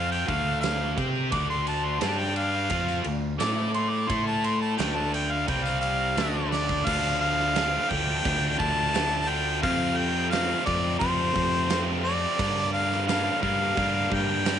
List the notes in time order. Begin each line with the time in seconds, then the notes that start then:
Already playing: F2 F3 C4 F4
0.11 G5, tambourine
0.27 D2 D3 A3 D4 F5, kick, ride
0.61 F5, snare, ride, tambourine
0.98 C3 C4 G4 C5, kick, ride, tambourine
1.15 tambourine
1.32 D2 D3 A3 D4 D6, kick, ride
1.50 C6
1.67 A5, ride, tambourine
1.84 C6, tambourine
2.01 G2 G3 D4 G4 A5, snare, ride, tambourine
2.18 G5, tambourine
2.36 F5, ride, tambourine
2.70 F2 F3 C4 F4, kick, ride
2.88 tambourine
3.04 D2 D3 A3, ride
3.39 A2 A3 E4 A4 D6, snare, ride, tambourine
3.74 C6, ride, tambourine
3.89 D6
3.94 tambourine
4.08 A2 A3 E4 A4 C6, kick, ride, tambourine
4.27 A5, tambourine
4.44 C6, ride, tambourine
4.61 A5, tambourine
4.77 D2 D3 A3 D4 G5, snare, ride, tambourine
4.95 A5
5.14 G5, ride, tambourine
5.31 F5, tambourine
5.47 C2 C3 G3 C4 G5, kick, ride
5.64 F5, tambourine
5.81 F5, ride
6.00 tambourine
6.17 D2 D3 A3 D4, snare, ride, tambourine
6.34 tambourine
6.51 D5, snare, tambourine
6.69 kick
6.86 D2 D3 F3 A3 D4 F5, kick, crash
7.20 F5
7.40 snare
7.56 D3 F3 A3 D4, snare, open hi-hat, tambourine
7.90 D2 D3 F3 A3 D4 G5, kick
8.24 D2 D3 F3 A3 D4, kick, open hi-hat
8.59 D2 A5, kick
8.93 D3 F3 A3 D4, snare, open hi-hat, tambourine
9.27 D3 F3 A3 D4 G5
9.61 F2 C3 F3 A3 C4 F5, kick, open hi-hat
9.97 G5
10.30 F2 C3 F3 A3 C4 F5, snare, open hi-hat, tambourine
10.65 F2 C3 F3 A3 C4 D5, kick
10.99 F2 C3 F3 A3 C4 C5, kick, open hi-hat
11.35 F2, kick
11.70 F2 C3 F3 A3 C4, snare, open hi-hat, tambourine
12.04 F2 C3 F3 A3 C4 D5
12.38 G2 D3 G3 A#3 D4, kick, crash
12.73 F5
12.92 snare
13.07 G2 D3 G3 A#3 D4 F5, snare, open hi-hat, tambourine
13.41 G2 D3 G3 A#3 D4 F5, kick
13.75 G2 D3 G3 A#3 D4, kick, open hi-hat
14.12 G2 G5, kick
14.45 G2 D3 G3 A#3 D4, snare, open hi-hat, tambourine